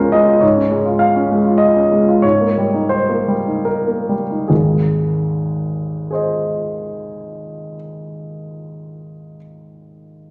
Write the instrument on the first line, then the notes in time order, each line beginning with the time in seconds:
grand piano
Already playing: G#2 G#3 F4 A#4 C5 C#5
0.00 C#4
0.12 G#3 D#5
0.28 F4
0.40 G#2 C#5
0.57 C#4
0.71 G#3
0.85 F4
0.99 F5
1.16 C#4
1.31 G#3
1.45 F4
1.58 D#5
1.75 C#4
1.92 G#3
2.08 F4
2.22 G#2 C#5
2.41 A#3
2.58 G3
2.74 D#4
2.89 C5
3.09 A#3
3.28 G3
3.47 D#4
3.65 A#4
3.87 A#3
4.09 G3
4.31 D#4
4.48 G#1 D#2 G#4
6.11 G#4 C5 D#5